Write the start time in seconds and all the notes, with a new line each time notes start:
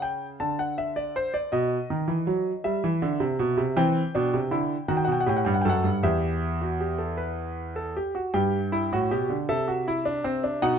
Already playing: C#3
0.02 G5
0.40 D3 A5
0.59 F#5
0.78 E5
0.96 D5
1.16 C5
1.34 D5
1.52 B2 D#5
1.90 D#3
2.08 E3
2.27 F#3
2.64 G3 E5
2.84 E3
3.02 D3
3.20 C3
3.39 B2
3.57 C3
3.76 E3 C4 G5
4.15 B2 D4
4.34 C3
4.51 D3 E4
4.88 D#3 F#4 F#5
4.97 G5
5.05 B2 F#5
5.12 G5
5.20 F#5
5.26 A2 G4 G5
5.37 F#5
5.45 G2 G5
5.54 F#5
5.61 F#2 A4 G5
5.70 F#5
5.84 G2
6.03 E2 G4 E5
6.61 F#4
6.80 G4
6.98 A4
7.17 B4
7.76 A4
7.97 G4
8.15 F#4
8.34 G2 G4 G5
8.72 E4
8.92 A2 F#4
9.11 B2 G4
9.30 D3
9.49 C3 A4 E5
9.68 F#4
9.88 E4
10.05 D4
10.24 C4
10.44 D4
10.62 B2 D#4 F#5